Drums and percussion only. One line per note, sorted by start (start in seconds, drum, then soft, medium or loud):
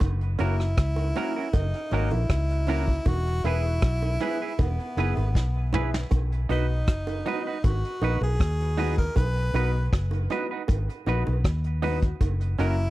0.00 kick loud
0.00 closed hi-hat medium
0.00 high bongo medium
0.21 closed hi-hat medium
0.39 closed hi-hat medium
0.39 high bongo medium
0.60 cross-stick medium
0.60 closed hi-hat soft
0.77 kick loud
0.77 cross-stick loud
0.77 closed hi-hat loud
0.96 closed hi-hat medium
0.96 high bongo medium
1.16 closed hi-hat medium
1.16 low bongo medium
1.53 kick loud
1.53 closed hi-hat medium
1.53 high bongo medium
1.74 closed hi-hat medium
1.91 closed hi-hat medium
1.91 high bongo medium
2.11 closed hi-hat soft
2.11 high bongo medium
2.30 kick loud
2.30 cross-stick loud
2.30 closed hi-hat medium
2.49 closed hi-hat medium
2.67 open hi-hat medium
2.67 low bongo medium
2.88 kick medium
3.05 kick loud
3.05 closed hi-hat medium
3.05 high bongo medium
3.26 closed hi-hat medium
3.44 closed hi-hat medium
3.44 high bongo medium
3.64 closed hi-hat soft
3.82 kick loud
3.82 cross-stick loud
3.82 closed hi-hat medium
4.02 closed hi-hat medium
4.02 high bongo medium
4.20 closed hi-hat medium
4.20 low bongo medium
4.40 closed hi-hat soft
4.59 kick loud
4.59 closed hi-hat medium
4.59 high bongo medium
4.80 closed hi-hat medium
4.97 closed hi-hat medium
4.97 high bongo medium
5.17 closed hi-hat soft
5.17 high bongo medium
5.35 kick loud
5.35 snare medium
5.73 mid tom medium
5.73 low bongo medium
5.94 snare medium
6.11 kick loud
6.11 closed hi-hat medium
6.11 high bongo medium
6.32 closed hi-hat medium
6.50 closed hi-hat medium
6.50 high bongo medium
6.87 kick loud
6.87 cross-stick loud
6.87 closed hi-hat loud
7.07 closed hi-hat medium
7.07 high bongo medium
7.26 closed hi-hat medium
7.26 low bongo medium
7.64 kick loud
7.64 closed hi-hat medium
7.64 high bongo medium
7.84 closed hi-hat medium
8.02 closed hi-hat medium
8.02 high bongo medium
8.22 high bongo medium
8.40 kick loud
8.40 cross-stick loud
8.40 closed hi-hat medium
8.60 closed hi-hat medium
8.78 open hi-hat medium
8.78 low bongo medium
8.98 kick medium
9.16 kick loud
9.16 closed hi-hat medium
9.16 high bongo medium
9.37 closed hi-hat soft
9.54 closed hi-hat medium
9.54 high bongo medium
9.93 kick loud
9.93 cross-stick loud
9.93 closed hi-hat loud
10.11 closed hi-hat medium
10.11 high bongo medium
10.30 closed hi-hat medium
10.30 low bongo medium
10.68 kick loud
10.68 closed hi-hat medium
10.68 high bongo medium
10.89 closed hi-hat medium
11.06 closed hi-hat medium
11.06 high bongo medium
11.27 closed hi-hat soft
11.27 high bongo medium
11.44 kick loud
11.44 cross-stick loud
11.44 closed hi-hat medium
11.64 closed hi-hat medium
11.82 open hi-hat medium
11.82 low bongo medium
12.02 kick medium
12.02 closed hi-hat soft
12.21 kick loud
12.21 closed hi-hat medium
12.21 high bongo medium
12.41 closed hi-hat medium
12.59 closed hi-hat medium
12.59 high bongo medium
12.79 closed hi-hat soft